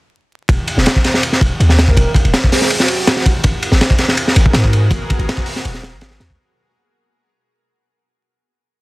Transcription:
0.49 D#1, kick, ride
0.68 ride
0.77 D#1, snare
0.86 snare, ride
0.96 kick
1.04 snare, ride
1.14 snare
1.23 ride
1.32 snare
1.41 D#1, kick, ride
1.60 D#2, ride
1.69 snare
1.79 snare, ride
1.88 A#4, kick
1.97 D#1, kick, ride
2.14 kick, ride
2.24 D#1, ride
2.34 snare, ride
2.44 kick
2.52 G#4, snare, open hi-hat
2.62 snare
2.70 ride
2.79 F#4, snare
2.88 ride
3.07 snare, ride
3.16 snare
3.26 kick, ride
3.44 G#1, kick, ride
3.62 ride
3.72 G#1, snare
3.81 snare, ride
3.90 kick
3.98 snare, ride
4.08 snare
4.17 ride
4.28 snare
4.36 G#1, ride
4.46 kick
4.53 G#2, snare, ride
4.64 kick
4.73 ride
4.91 G#1, kick, ride
5.10 kick, ride
5.19 G#1, ride
5.29 snare, ride
5.37 kick
5.46 open hi-hat
5.56 snare
5.65 D#1, ride
5.74 snare
5.83 snare, ride
5.93 G#1
6.01 snare, ride
6.11 snare
6.20 D#2, snare, ride
6.30 kick

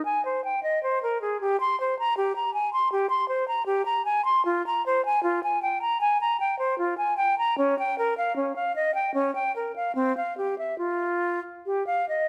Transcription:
0.05 G#5
0.25 C5
0.44 G5
0.63 D#5
0.83 C5
1.03 A#4
1.21 G#4
1.41 G4
1.60 C6
1.80 C5
1.99 A#5
2.17 G4
2.36 A#5
2.54 G#5
2.73 C6
2.92 G4
3.10 C6
3.29 C5
3.48 A#5
3.66 G4
3.85 A#5
4.05 G#5
4.25 C6
4.45 F4
4.67 A#5
4.86 C5
5.05 G#5
5.23 F4
5.43 G#5
5.62 G5
5.82 A#5
6.01 G#5
6.21 A#5
6.40 G5
6.59 C5
6.78 F4
6.98 G#5
7.17 G5
7.38 A#5
7.58 C#4
7.79 G5
7.98 A#4
8.18 F5
8.36 C#4
8.56 F5
8.76 D#5
8.95 G5
9.14 C#4
9.35 G5
9.56 A#4
9.76 F5
9.95 C4
10.17 F5
10.38 G4
10.58 E5
10.78 F4
11.66 G4
11.87 F5
12.09 D#5

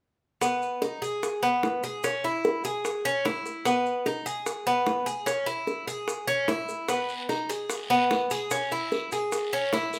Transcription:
0.41 B3, high bongo, maracas
0.62 maracas
0.82 D#4, high bongo, maracas
1.02 G#4, maracas
1.23 high bongo, maracas
1.43 B3, maracas
1.63 high bongo, low bongo, maracas
1.83 G#4, maracas
2.03 C#4, high bongo, maracas
2.24 E4, high bongo, maracas
2.44 high bongo, maracas
2.64 G#4, high bongo, maracas
2.85 high bongo, maracas
3.05 C#4, maracas
3.25 E4, high bongo, low bongo, maracas
3.46 high bongo, maracas
3.65 B3, high bongo, maracas
3.86 maracas
4.06 D#4, high bongo, maracas
4.26 G#4, maracas
4.46 high bongo, maracas
4.67 B3, maracas
4.87 high bongo, low bongo, maracas
5.06 G#4, maracas
5.26 C#4, high bongo, maracas
5.46 E4, high bongo, maracas
5.67 high bongo, maracas
5.87 G#4, high bongo, maracas
6.08 high bongo, maracas
6.28 C#4, maracas
6.48 E4, high bongo, low bongo, maracas
6.69 high bongo, maracas
6.88 B3, high bongo, long guiro, maracas
7.09 maracas
7.29 D#4, high bongo, short guiro, maracas
7.49 G#4, short guiro, maracas
7.70 high bongo, long guiro, maracas
7.90 B3, maracas
8.10 high bongo, low bongo, short guiro, maracas
8.31 G#4, short guiro, maracas
8.50 C#4, high bongo, long guiro, maracas
8.71 E4, high bongo, maracas
8.92 high bongo, short guiro, maracas
9.12 G#4, high bongo, short guiro, maracas
9.32 high bongo, long guiro, maracas
9.52 C#4, maracas
9.73 E4, high bongo, low bongo, short guiro, maracas
9.93 high bongo, short guiro, maracas

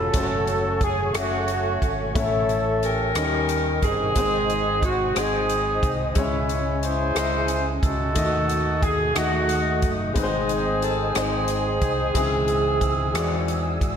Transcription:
Already playing: F1 C#3 G#3 C#4 F4 F#4 A4 B4 C#5 F5 B5
0.13 F#1 A3 C#4 F#4 C5 F#5 C#6, kick, closed hi-hat
0.23 C#5
0.47 closed hi-hat
0.81 G#4, kick, closed hi-hat
1.13 F#1 A3 C#4 F#4 E5, cross-stick, closed hi-hat
1.18 A3 C#4
1.48 closed hi-hat
1.82 G#1, kick, closed hi-hat
2.13 A1 A2 A3 C#4 E4 A4 E5, kick, closed hi-hat
2.17 C#5
2.49 closed hi-hat
2.83 C#4 G4 A#4, closed hi-hat
3.15 D#2 D#3 G3 C#4 D#4 A#4 D#5 G5, cross-stick, closed hi-hat
3.49 closed hi-hat
3.82 G1 C4 D#4 G#4, kick, closed hi-hat
4.15 G#1 G#2 G#3 C4 D#4 C5 D#5 G#5 D#6, kick, closed hi-hat
4.50 closed hi-hat
4.82 F#4, kick, closed hi-hat
5.14 G#1 G#3 C4 D#4 G#4 C5, cross-stick, closed hi-hat
5.19 C4 D#4
5.49 closed hi-hat
5.83 C2, kick, closed hi-hat
6.14 C#2 C#3 G#3 C#4 E4 G#5, kick, closed hi-hat
6.18 C#5
6.49 closed hi-hat
6.82 E4 G#4 C5, closed hi-hat
7.14 C#2 G#3 C#4 E4 D#5, cross-stick, closed hi-hat
7.48 closed hi-hat
7.82 C#2 D#4 F#4 A4, kick, closed hi-hat
8.15 D#2 D#3 A3 D#4 E4 D#5 F#5 D#6, kick, closed hi-hat
8.24 F#4
8.49 closed hi-hat
8.82 G#4, kick, closed hi-hat
9.14 D#2 A3 D#4 F#4 E5, cross-stick, closed hi-hat
9.18 A3 D#4
9.23 F#5
9.49 closed hi-hat
9.82 F#1, kick, closed hi-hat
10.13 G#1 G#2 G#3 C4 D#4 B4 C5 G#5 D#6, kick, closed hi-hat
10.19 C4 G#4 C5
10.49 closed hi-hat
10.82 A4, closed hi-hat
11.14 G#1 G#3 C4 D#4 G#4 C5, cross-stick, closed hi-hat
11.18 D#4
11.48 closed hi-hat
11.82 C2, kick, closed hi-hat
12.14 C#2 C#3 E3 G#3 G#4 G#5 E6, kick, closed hi-hat
12.48 closed hi-hat
12.81 kick, closed hi-hat
13.13 E2 E3 G#3 F#4 G#4 D5 F#5, cross-stick, closed hi-hat
13.48 closed hi-hat
13.81 G#1, kick, closed hi-hat

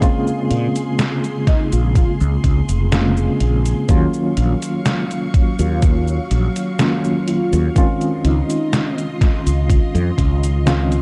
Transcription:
Already playing: A#3 C4 F4 G#4 C6
0.00 C#3 G#3 A#3 C4 F4, kick, closed hi-hat, cabasa
0.27 cabasa
0.51 A#2, closed hi-hat
0.76 closed hi-hat, cabasa
0.99 snare, closed hi-hat, cabasa
1.24 closed hi-hat, cabasa
1.47 D#4, kick, snare, closed hi-hat
1.72 A#1 F4, closed hi-hat, cabasa
1.95 F4, kick, closed hi-hat, cabasa
2.21 C#2, cabasa
2.44 C#2, kick, closed hi-hat
2.69 F1, closed hi-hat, cabasa
2.92 C#3 G#3 A#3 C4 F4, snare, closed hi-hat, cabasa
3.17 cabasa
3.40 A#1, closed hi-hat
3.66 closed hi-hat, cabasa
3.88 D#2 D#3 F#3 A#3 C#4 F4 F5 C#6, kick, closed hi-hat, cabasa
4.14 cabasa
4.37 A#1, closed hi-hat
4.62 closed hi-hat, cabasa
4.86 snare, closed hi-hat, cabasa
5.11 closed hi-hat, cabasa
5.34 kick, closed hi-hat
5.59 D#2 F4, closed hi-hat, cabasa
5.82 kick, closed hi-hat, cabasa
6.08 cabasa
6.31 A#1, closed hi-hat
6.56 closed hi-hat, cabasa
6.79 D#3 F#3 A#3 C#4 F4, snare, closed hi-hat, cabasa
7.04 cabasa
7.28 F4, closed hi-hat
7.53 D#2, closed hi-hat, cabasa
7.75 D#3 G#3 C4 C#4 F4 D#5 C6, kick, closed hi-hat, cabasa
8.01 closed hi-hat, cabasa
8.24 C#2 D#4, closed hi-hat
8.50 closed hi-hat, cabasa
8.73 snare, closed hi-hat, cabasa
8.98 closed hi-hat, cabasa
9.21 kick, snare, closed hi-hat
9.46 C#2, closed hi-hat, cabasa
9.70 kick, closed hi-hat, cabasa
9.95 F2, closed hi-hat, cabasa
10.18 C#2, kick, closed hi-hat
10.44 closed hi-hat, cabasa
10.66 D#3 G#3 C4 C#4 F4, snare, closed hi-hat, cabasa
10.92 closed hi-hat, cabasa

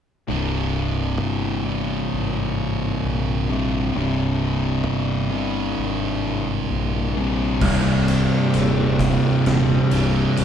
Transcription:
0.28 C1 C2 G2 C3
1.21 G1
1.65 C2 G2 C3
2.13 G#1
3.04 A#1
3.49 C2 G2 C3
3.94 C1 C2 G2 C3
4.87 G1
5.31 C2 G2 C3
5.78 G#1
6.70 A#1
7.17 C2 G2 C3
7.59 C1 C2 G2 C3 G3 D4, kick, crash
8.08 ride
8.54 D#1, ride
8.99 kick, ride
9.46 D#1, snare, ride
9.89 C1 C2 G2 C3, ride
10.36 D#1 C2 G2 C3, ride

